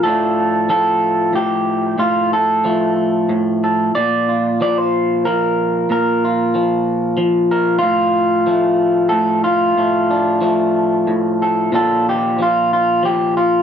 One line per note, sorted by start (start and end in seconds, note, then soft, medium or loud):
0.00 0.06 F3 medium
0.00 0.68 A4 loud
0.05 1.32 A2 medium
0.05 0.69 F3 soft
0.05 2.64 A3 soft
0.05 3.57 D4 soft
0.69 2.64 F3 medium
0.69 1.34 A4 loud
1.33 1.94 A2 medium
1.33 1.99 G4 medium
1.98 3.28 A2 medium
1.98 2.31 F4 medium
2.33 3.62 A4 medium
2.65 4.60 F3 medium
2.65 3.95 A3 soft
3.29 3.91 A2 medium
3.64 3.91 A4 soft
3.95 5.86 A#2 medium
3.95 4.60 D5 loud
4.29 6.24 F4 soft
4.61 5.27 F3 medium
4.61 4.78 D5 loud
4.78 5.25 C5 medium
5.25 6.55 F3 medium
5.25 5.89 A#4 medium
5.90 7.78 A#2 medium
5.90 7.50 A#4 medium
6.25 7.79 F4 soft
6.55 7.17 F3 medium
7.17 8.47 F3 medium
7.51 7.78 A#4 medium
7.79 9.09 F4 loud
7.83 9.11 A2 medium
8.47 10.40 F3 medium
8.47 9.77 A3 soft
9.09 9.73 A2 medium
9.09 9.43 A4 medium
9.44 11.42 F4 medium
9.78 11.06 A2 medium
9.78 10.41 A3 soft
10.11 11.70 D4 soft
10.41 11.72 F3 medium
10.41 11.73 A3 soft
11.07 11.69 A2 medium
11.42 11.70 A4 soft
11.72 13.62 A#2 medium
11.72 12.38 F3 soft
11.72 13.62 D4 soft
11.72 12.41 F4 soft
11.72 12.07 A4 loud
12.09 12.40 G4 medium
12.39 13.02 F3 medium
12.39 12.72 F4 medium
12.73 13.04 F4 medium
13.03 13.62 F3 medium
13.03 13.37 G4 medium
13.37 13.62 F4 medium